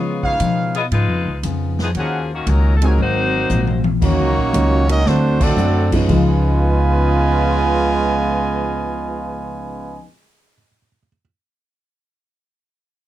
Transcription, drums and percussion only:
0.23 kick medium
0.40 kick soft
0.40 hi-hat pedal medium
0.40 ride medium
0.75 ride soft
0.92 kick soft
0.92 ride medium
1.43 kick soft
1.43 hi-hat pedal medium
1.43 ride medium
1.79 snare soft
1.95 kick soft
1.95 ride medium
2.47 kick soft
2.47 hi-hat pedal medium
2.47 ride medium
2.82 ride medium
2.98 kick soft
3.50 hi-hat pedal medium
3.50 high tom soft
3.67 high tom medium
3.84 high tom medium
4.02 kick medium
4.02 crash medium
4.54 kick soft
4.54 hi-hat pedal medium
4.54 ride medium
4.89 ride medium
5.06 snare medium
5.41 kick loud
5.41 crash medium
5.58 hi-hat pedal medium
5.92 kick medium
5.92 crash medium
6.09 kick medium
6.09 crash medium

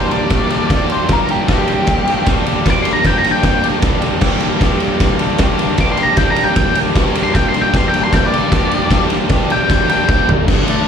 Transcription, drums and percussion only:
0.11 ride medium
0.30 kick loud
0.30 snare loud
0.30 ride loud
0.50 ride medium
0.70 kick loud
0.70 snare loud
0.70 ride loud
0.90 ride medium
1.09 kick loud
1.09 snare loud
1.09 ride loud
1.29 ride medium
1.48 kick loud
1.48 snare loud
1.48 ride loud
1.68 ride medium
1.87 kick loud
1.87 snare loud
1.87 ride loud
2.07 ride medium
2.26 kick loud
2.26 snare loud
2.26 ride loud
2.46 ride medium
2.66 kick loud
2.66 snare loud
2.66 ride loud
2.85 ride medium
3.04 kick loud
3.04 snare loud
3.04 ride loud
3.24 ride medium
3.43 kick loud
3.43 snare loud
3.43 ride loud
3.64 ride medium
3.82 kick loud
3.82 snare loud
3.82 ride loud
4.02 ride medium
4.21 kick loud
4.21 snare loud
4.21 crash loud
4.40 ride medium
4.61 kick loud
4.61 snare loud
4.61 ride medium
4.80 ride medium
5.00 kick loud
5.00 snare loud
5.00 ride loud
5.19 ride medium
5.38 kick loud
5.38 snare loud
5.38 ride loud
5.59 ride medium
5.78 kick loud
5.78 snare loud
5.78 ride loud
5.97 ride medium
6.17 kick loud
6.17 snare loud
6.17 ride loud
6.36 ride medium
6.56 kick loud
6.56 snare loud
6.56 ride loud
6.75 ride medium
6.95 kick loud
6.95 snare loud
6.95 ride loud
7.15 ride medium
7.35 kick loud
7.35 snare loud
7.35 ride loud
7.54 ride medium
7.74 kick loud
7.74 snare loud
7.74 ride loud
7.94 ride medium
8.13 kick loud
8.13 snare loud
8.13 ride loud
8.34 ride medium
8.52 kick loud
8.52 snare loud
8.52 ride loud
8.71 ride medium
8.91 kick loud
8.91 snare loud
8.91 ride loud
9.10 ride medium
9.29 kick loud
9.29 snare loud
9.29 ride loud
9.50 ride medium
9.70 kick loud
9.70 snare loud
9.70 ride loud
9.89 ride medium
10.09 kick loud
10.09 snare medium
10.29 floor tom loud
10.48 kick loud
10.48 snare loud
10.48 crash loud
10.68 ride medium

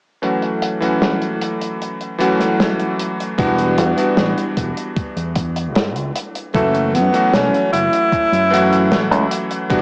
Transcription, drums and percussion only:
0.23 closed hi-hat medium
0.42 closed hi-hat soft
0.62 closed hi-hat medium
0.82 closed hi-hat medium
1.02 snare loud
1.02 closed hi-hat medium
1.22 closed hi-hat soft
1.41 closed hi-hat medium
1.61 closed hi-hat medium
1.82 closed hi-hat medium
2.01 closed hi-hat soft
2.21 closed hi-hat medium
2.40 snare soft
2.40 closed hi-hat medium
2.60 snare loud
2.60 closed hi-hat medium
2.79 closed hi-hat soft
2.99 closed hi-hat medium
3.20 closed hi-hat medium
3.39 kick loud
3.39 closed hi-hat medium
3.58 closed hi-hat soft
3.78 closed hi-hat loud
3.98 closed hi-hat medium
4.17 snare loud
4.17 closed hi-hat medium
4.38 closed hi-hat soft
4.57 kick medium
4.57 closed hi-hat medium
4.77 closed hi-hat medium
4.97 kick loud
4.97 closed hi-hat medium
5.17 closed hi-hat soft
5.36 kick loud
5.36 closed hi-hat loud
5.56 closed hi-hat medium
5.76 snare loud
5.76 closed hi-hat medium
5.96 closed hi-hat soft
6.16 closed hi-hat loud
6.35 closed hi-hat medium
6.55 kick loud
6.55 closed hi-hat medium
6.75 closed hi-hat soft
6.95 closed hi-hat loud
7.14 closed hi-hat medium
7.34 snare loud
7.34 closed hi-hat medium
7.54 closed hi-hat soft
7.74 closed hi-hat medium
7.93 closed hi-hat medium
8.12 kick loud
8.12 closed hi-hat medium
8.33 closed hi-hat soft
8.54 closed hi-hat medium
8.73 closed hi-hat medium
8.92 snare loud
8.92 closed hi-hat medium
9.12 closed hi-hat soft
9.31 closed hi-hat loud
9.51 closed hi-hat medium
9.70 kick loud
9.70 closed hi-hat medium

